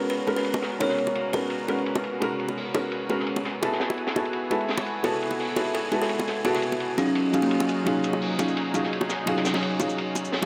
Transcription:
Already playing: felt piano G#3 B3 C#4 F#4 A#4, analog synth pad B3 C#4 F#4 A#4
0.10 kalimba B4, ride
0.27 felt piano G#3 B3 C#4 F#4 A#4, ride, high bongo
0.36 kalimba B4, snare
0.44 ride
0.54 high bongo
0.62 snare, ride
0.79 felt piano G#3 B3 C#4 F#4 A#4, kalimba C#5, ride, high bongo
0.89 snare
0.98 ride
1.07 ride, high bongo
1.15 ride
1.33 felt piano G#3 B3 C#4 F#4 A#4, kalimba B4, ride, high bongo
1.50 ride
1.68 felt piano G#3 B3 C#4 F#4 A#4, ride, high bongo
1.78 ride
1.86 ride
1.95 high bongo
2.04 ride, shaker
2.20 felt piano G#3 B3 C#4 F#4 A#4, ride, high bongo
2.39 ride, shaker
2.49 high bongo
2.57 open hi-hat
2.74 felt piano G#3 B3 C#4 F#4 A#4, ride, high bongo
2.92 ride
3.09 felt piano G#3 B3 C#4 F#4 A#4, ride, high bongo
3.19 snare
3.27 ride
3.36 high bongo
3.45 snare, ride, shaker
3.61 felt piano B3 E4 F#4 G#4 A4, analog synth pad B3 E4 F#4 G#5, ride, high bongo
3.72 snare
3.80 snare, ride, shaker
3.90 high bongo
3.98 ride
4.07 snare, ride
4.15 felt piano B3 E4 F#4 G#4 A4, high bongo, shaker
4.25 ride, shaker
4.33 ride
4.50 felt piano G#3 B3 E4 F#4 A4, ride, high bongo, shaker
4.60 ride
4.68 snare, open hi-hat
4.78 high bongo
4.86 ride, shaker
5.03 felt piano B3 E4 F#4 G#4 A4, kalimba A4, ride, high bongo
5.22 ride, shaker
5.31 high bongo
5.40 open hi-hat
5.56 felt piano B3 E4 F#4 G#4 A4, kalimba A4, ride, high bongo, shaker
5.66 shaker
5.74 kalimba A4, ride
5.92 felt piano G#3 B3 E4 F#4 A4, ride, high bongo, shaker
6.01 kalimba A4, snare
6.09 ride
6.19 high bongo
6.27 snare, ride, shaker
6.44 felt piano B3 E4 F#4 G#4 A4, kalimba F#4, ride, high bongo
6.54 kalimba F#4, snare
6.62 ride, shaker
6.72 ride, high bongo
6.80 ride
6.97 felt piano F#3 C#4 D#4 F4 G#4, kalimba C#4, ride, high bongo, shaker
7.07 shaker
7.15 analog synth pad F#3 C#4 D#4 F4 G#4, ride
7.33 felt piano F#3 C#4 D#4 F4 G#4, ride, high bongo, shaker
7.42 kalimba A#3, ride
7.51 ride
7.60 high bongo
7.69 ride, shaker
7.85 felt piano F#3 C#4 D#4 F4 G#4, ride, high bongo
8.04 ride, shaker
8.13 high bongo
8.21 open hi-hat
8.39 felt piano F#3 C#4 D#4 F4 G#4, ride, high bongo, shaker
8.48 shaker
8.57 ride
8.74 felt piano F#3 C#4 D#4 F4 G#4, ride, high bongo, shaker
8.83 snare
8.93 ride
9.01 high bongo
9.09 snare, ride, shaker
9.26 felt piano F#3 C#4 D#4 F4 G#4, ride, high bongo
9.36 snare
9.45 snare, open hi-hat, shaker
9.54 snare, open hi-hat, high bongo
9.63 ride
9.80 felt piano F#3 C#4 D#4 F4 G#4, ride, high bongo, shaker
9.89 shaker
9.98 ride
10.15 ride, high bongo, shaker
10.25 shaker
10.32 snare, open hi-hat
10.42 felt piano F#3 C#4 D#4

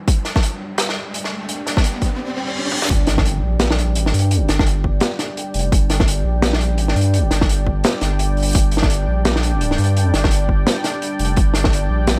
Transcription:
Already playing: analog synth pad G3 D4 D5 G5, riser
0.08 kick, closed hi-hat
0.25 snare, closed hi-hat
0.36 kick, snare
0.43 closed hi-hat
0.78 snare, closed hi-hat
0.89 snare
1.14 closed hi-hat
1.24 snare
1.49 closed hi-hat
1.67 snare, closed hi-hat
1.77 kick, snare
1.84 closed hi-hat
2.02 kick, closed hi-hat
2.19 reverse cymbal
2.72 high tom
2.82 snare
2.90 sub bass G1, kick, closed hi-hat, impact
3.07 snare, closed hi-hat
3.18 kick, snare
3.25 closed hi-hat
3.43 sub bass A#1
3.60 snare, closed hi-hat
3.71 snare
3.79 closed hi-hat
3.92 sub bass A1, closed hi-hat
4.06 snare
4.14 sub bass G2, closed hi-hat
4.19 closed hi-hat
4.31 closed hi-hat
4.49 sub bass G1, snare, closed hi-hat
4.59 kick, snare
4.66 closed hi-hat
4.84 kick
5.00 snare, closed hi-hat
5.19 snare, closed hi-hat
5.37 closed hi-hat
5.54 sub bass F1, closed hi-hat
5.59 closed hi-hat
5.72 sub bass G1, kick, closed hi-hat
5.90 snare, closed hi-hat
6.00 kick, snare
6.08 closed hi-hat
6.25 sub bass A#1
6.42 snare, closed hi-hat
6.53 snare
6.61 closed hi-hat
6.74 sub bass A1, closed hi-hat
6.88 snare
6.96 sub bass G2, closed hi-hat
7.01 closed hi-hat
7.14 closed hi-hat
7.31 sub bass G1, snare, closed hi-hat
7.41 kick, snare
7.49 closed hi-hat
7.67 kick
7.84 snare, closed hi-hat
8.01 sub bass G1, snare, closed hi-hat
8.19 closed hi-hat
8.37 closed hi-hat
8.40 closed hi-hat
8.42 closed hi-hat
8.45 closed hi-hat
8.47 closed hi-hat
8.49 closed hi-hat
8.51 closed hi-hat
8.53 closed hi-hat
8.55 sub bass G1, kick, closed hi-hat
8.71 closed hi-hat
8.77 snare
8.83 kick, snare
8.90 closed hi-hat
9.08 sub bass A#1
9.25 snare, closed hi-hat
9.36 snare
9.43 closed hi-hat
9.61 closed hi-hat
9.71 snare
9.78 sub bass G2, closed hi-hat
9.84 closed hi-hat
9.97 closed hi-hat
10.14 sub bass G1, snare, closed hi-hat
10.24 kick, snare
10.31 closed hi-hat
10.49 kick
10.67 snare, closed hi-hat
10.84 snare, closed hi-hat
11.02 closed hi-hat
11.19 sub bass F1, closed hi-hat
11.25 closed hi-hat
11.36 sub bass G1, kick, closed hi-hat
11.54 snare, closed hi-hat
11.64 kick, snare
11.73 closed hi-hat
11.90 sub bass A#1
12.07 snare, closed hi-hat

